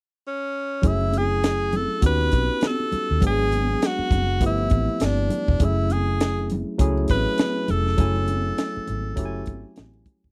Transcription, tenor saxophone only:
0.27 0.88 C#4 medium
0.87 1.19 E4 medium
1.18 1.77 G#4 loud
1.76 2.04 A4 medium
2.06 2.68 B4 medium
2.67 3.24 A4 medium
3.26 3.88 G#4 loud
3.87 4.44 F#4 medium
4.46 5.05 E4 medium
5.04 5.65 D4 medium
5.64 5.94 E4 medium
5.92 6.51 G#4 medium
7.11 7.72 B4 medium
7.70 9.78 A4 medium

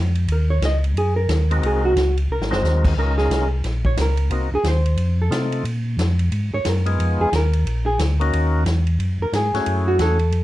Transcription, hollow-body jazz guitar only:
0.32 0.50 A#4 medium
0.50 0.62 C#5 medium
0.65 0.77 D#5 loud
0.98 1.16 G#4 medium
1.16 1.59 A#4 loud
1.66 1.85 G#4 medium
1.85 2.15 F#4 medium
2.32 2.51 A#4 medium
2.52 2.94 C5 loud
2.99 3.18 A#4 medium
3.18 3.49 G#4 medium
3.86 3.98 C#5 medium
4.01 4.50 A#4 medium
4.55 4.66 G#4 loud
4.68 5.17 C5 loud
5.22 5.33 A4 medium
6.54 6.69 C#5 loud
6.69 7.21 A#4 loud
7.21 7.33 G#4 loud
7.36 7.84 A#4 loud
7.86 7.99 G#4 medium
9.22 9.34 A#4 loud
9.36 9.85 G#4 medium
9.88 10.00 F#4 loud
10.02 10.44 A4 medium

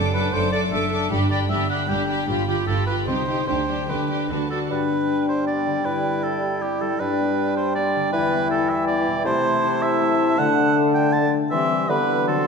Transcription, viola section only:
0.00 0.13 D4 soft
0.15 0.33 D4 soft
0.34 0.52 D4 soft
0.53 0.71 D4 soft
0.72 0.91 D4 soft
0.92 1.10 D4 soft
1.11 1.30 D4 soft
1.31 1.49 D4 soft
1.50 1.68 D4 soft
1.69 1.88 D4 soft
1.89 2.08 D4 soft
2.09 2.28 D4 soft
2.28 2.47 F4 soft
2.48 2.66 F4 soft
2.67 2.86 F4 soft
2.87 3.07 F4 soft
3.07 3.27 D#4 soft
3.28 3.48 D#4 soft
3.48 3.67 D4 soft
3.69 3.89 D4 soft
3.90 4.09 D4 soft
4.10 4.29 D4 soft
4.30 4.49 D4 soft
4.51 4.70 D4 soft

